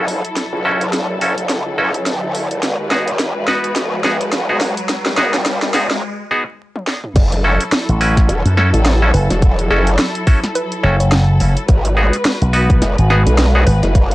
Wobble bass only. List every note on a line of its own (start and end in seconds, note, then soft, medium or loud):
0.00 0.22 F#1 loud
0.53 1.07 C#2 loud
1.10 1.35 F#1 medium
1.38 1.64 A1 loud
1.66 2.04 C#2 loud
2.06 2.48 F#1 loud
2.51 2.61 E1 loud
2.63 2.77 G#1 loud
2.79 3.33 D#2 loud
3.36 3.46 F#1 loud
3.76 4.03 B1 medium
4.04 4.31 F#1 medium
4.33 4.75 G#1 loud
5.06 5.60 D#2 loud
5.62 5.88 G#1 loud
5.90 6.02 G#1 medium
7.16 7.58 F#1 loud
8.29 8.43 E1 loud
8.74 9.12 A1 loud
9.30 9.69 E1 loud
9.70 9.97 F#1 medium
11.69 12.11 G#1 loud
12.82 12.96 F#1 loud
13.26 13.65 B1 loud
13.83 14.15 F#1 loud